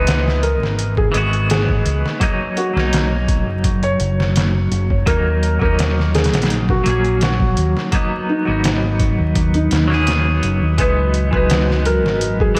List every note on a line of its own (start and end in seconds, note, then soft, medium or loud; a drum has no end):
0.00 0.62 C#2 medium
0.00 1.09 E3 medium
0.00 1.10 G#3 medium
0.00 1.11 B3 medium
0.00 1.12 D#4 medium
0.00 0.38 B4 medium
0.07 snare loud
0.07 closed hi-hat medium
0.28 snare soft
0.43 0.92 A#4 medium
0.43 closed hi-hat medium
0.62 1.11 G#1 medium
0.62 snare soft
0.79 closed hi-hat medium
0.97 1.45 G#4 medium
0.97 kick medium
1.12 1.82 G#1 medium
1.12 2.16 E3 medium
1.12 2.17 G#3 medium
1.12 2.18 B3 medium
1.12 closed hi-hat medium
1.18 2.19 F#4 loud
1.33 closed hi-hat soft
1.50 1.99 G#4 medium
1.50 snare loud
1.50 closed hi-hat medium
1.69 kick medium
1.86 2.02 C#2 medium
1.86 closed hi-hat medium
2.06 snare soft
2.20 2.71 F#3 loud
2.20 2.71 A#3 medium
2.20 2.72 C#4 medium
2.20 2.72 D#4 loud
2.20 kick loud
2.20 closed hi-hat medium
2.57 3.06 F#4 medium
2.57 closed hi-hat medium
2.73 3.48 B1 medium
2.73 5.02 F#3 medium
2.73 5.03 A#3 medium
2.73 snare soft
2.78 5.04 C#4 medium
2.78 5.05 D#4 loud
2.93 snare loud
2.93 closed hi-hat medium
3.28 kick medium
3.28 closed hi-hat medium
3.48 3.97 F#1 medium
3.64 kick loud
3.64 closed hi-hat medium
3.83 4.94 C#5 medium
3.83 closed hi-hat soft
4.00 4.68 F#1 medium
4.00 closed hi-hat medium
4.20 snare soft
4.36 snare loud
4.36 closed hi-hat medium
4.71 5.03 F#1 medium
4.71 closed hi-hat medium
4.90 kick medium
5.06 5.58 D#2 loud
5.06 5.57 F#3 medium
5.06 5.57 A#3 medium
5.06 5.58 C#4 medium
5.06 5.58 D#4 medium
5.06 5.56 A#4 medium
5.06 kick loud
5.06 closed hi-hat medium
5.43 closed hi-hat medium
5.59 6.33 D#2 medium
5.59 6.80 F#3 medium
5.59 6.81 A#3 medium
5.59 6.09 A#4 medium
5.59 kick loud
5.63 6.82 C#4 medium
5.63 6.83 D#4 medium
5.79 snare loud
5.79 closed hi-hat medium
5.99 snare soft
6.15 6.63 G#4 medium
6.15 snare medium
6.15 closed hi-hat medium
6.24 snare medium
6.24 closed hi-hat medium
6.33 6.83 A#1 medium
6.33 snare medium
6.33 closed hi-hat medium
6.42 snare medium
6.42 closed hi-hat medium
6.50 closed hi-hat medium
6.69 7.17 F#4 medium
6.69 kick medium
6.84 7.54 A#1 medium
6.84 7.88 F#3 medium
6.84 7.89 A#3 medium
6.84 7.90 C#4 medium
6.84 closed hi-hat medium
6.90 7.91 G#4 loud
7.05 closed hi-hat soft
7.21 7.71 F#4 medium
7.21 snare loud
7.21 closed hi-hat medium
7.40 kick medium
7.57 7.74 D#2 medium
7.57 closed hi-hat medium
7.77 snare soft
7.92 8.42 F#3 medium
7.92 8.43 A#3 medium
7.92 8.43 B3 medium
7.92 8.44 D#4 loud
7.92 kick loud
7.92 closed hi-hat medium
8.29 8.78 D#4 medium
8.45 9.21 G#1 medium
8.45 9.85 F#3 medium
8.45 9.86 A#3 medium
8.49 9.87 B3 medium
8.49 9.88 D#4 medium
8.64 snare loud
8.64 closed hi-hat medium
9.00 kick medium
9.00 closed hi-hat medium
9.20 9.68 D#2 medium
9.35 kick loud
9.35 closed hi-hat medium
9.54 10.65 D#4 medium
9.54 closed hi-hat soft
9.71 10.40 D#2 medium
9.71 snare loud
9.71 closed hi-hat medium
9.88 10.73 F#3 medium
9.88 10.74 A#3 medium
9.88 snare soft
9.92 10.75 B3 medium
9.92 10.76 G#4 medium
10.07 snare loud
10.07 closed hi-hat medium
10.43 10.60 F#1 medium
10.43 closed hi-hat medium
10.62 10.76 D#2 medium
10.78 11.29 C#2 medium
10.78 11.28 E3 medium
10.78 12.60 F#3 medium
10.78 11.29 G#3 medium
10.78 11.29 B3 medium
10.78 11.30 D#4 medium
10.78 12.60 F#4 medium
10.78 11.27 B4 medium
10.78 kick loud
10.78 closed hi-hat medium
11.14 closed hi-hat medium
11.31 12.05 C#2 medium
11.31 12.52 E3 medium
11.31 12.53 G#3 medium
11.31 11.81 B4 medium
11.31 kick medium
11.35 12.54 B3 medium
11.35 12.55 D#4 medium
11.50 snare loud
11.50 closed hi-hat medium
11.70 snare soft
11.85 12.35 A#4 medium
11.85 closed hi-hat medium
12.05 12.54 G#1 medium
12.05 snare soft
12.21 closed hi-hat medium
12.40 12.60 G#4 medium
12.40 kick medium
12.55 12.60 E3 loud
12.55 closed hi-hat medium